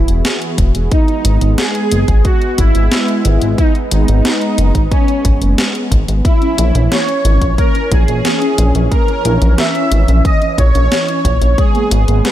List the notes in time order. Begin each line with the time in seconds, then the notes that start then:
Already playing: E3 B3 E4 F#4 G#4
0.08 E1, closed hi-hat
0.25 snare, closed hi-hat
0.42 closed hi-hat
0.58 E1, kick, closed hi-hat
0.75 E1, closed hi-hat
0.91 G#3 B3 D#4, kick, closed hi-hat
1.08 closed hi-hat
1.25 G#1, closed hi-hat
1.41 G#1, closed hi-hat
1.58 G#4, snare, closed hi-hat
1.75 closed hi-hat
1.92 F#1, closed hi-hat
2.08 G#1, kick, closed hi-hat
2.25 F#4, kick, closed hi-hat
2.42 closed hi-hat
2.58 G#1 E4, kick, closed hi-hat
2.75 G#1, closed hi-hat
2.92 snare, closed hi-hat
3.08 closed hi-hat
3.25 G#1, closed hi-hat
3.42 G#1, closed hi-hat
3.58 D#4, kick, closed hi-hat
3.75 closed hi-hat
3.91 G#1 D#4, closed hi-hat
4.08 G#1, closed hi-hat
4.25 snare, closed hi-hat
4.42 closed hi-hat
4.58 F#1, closed hi-hat
4.75 G#1, kick, closed hi-hat
4.92 C#4, kick, closed hi-hat
5.08 closed hi-hat
5.25 G#1, kick, closed hi-hat
5.42 F#1, closed hi-hat
5.58 snare, closed hi-hat
5.75 closed hi-hat
5.92 G#1, kick, closed hi-hat
6.08 G#1, closed hi-hat
6.25 E3 A#3 C#4 E4, kick, closed hi-hat
6.42 C#4, closed hi-hat
6.58 A#1 E4, closed hi-hat
6.75 A#1 C#4, closed hi-hat
6.92 A#3 C#5, snare, closed hi-hat
7.08 C#4, closed hi-hat
7.25 G#1 E4, closed hi-hat
7.41 A#1 C#4, kick, closed hi-hat
7.58 A#3 A#4, kick, closed hi-hat
7.75 C#4, closed hi-hat
7.92 A#1 E4 G#4, kick, closed hi-hat
8.08 A#1 C#4, closed hi-hat
8.25 A#3, snare, closed hi-hat
8.41 C#4, closed hi-hat
8.58 A#1 E4, closed hi-hat
8.75 A#1 C#4, closed hi-hat
8.91 A#3 A#4, kick, closed hi-hat
9.08 C#4, closed hi-hat
9.25 A#1 E4, closed hi-hat
9.42 A#1 C#4, closed hi-hat
9.58 A#3 E5, snare, closed hi-hat
9.75 C#4, closed hi-hat
9.91 G#1 E4, closed hi-hat
10.08 A#1 C#4, closed hi-hat
10.25 A#3 D#5, kick, closed hi-hat
10.42 C#4, closed hi-hat
10.58 A#1 E4 C#5, kick, closed hi-hat
10.75 A#1 C#4, closed hi-hat
10.91 A#3, snare, closed hi-hat
11.08 C#4, closed hi-hat
11.25 A#1 E4, kick, closed hi-hat
11.41 A#1 C#4, closed hi-hat
11.58 G#3 B3 G#4, kick, closed hi-hat
11.75 A#3, closed hi-hat
11.91 G#1 B3, closed hi-hat
12.08 G#1 A#3, closed hi-hat
12.25 G#3 B4, snare, closed hi-hat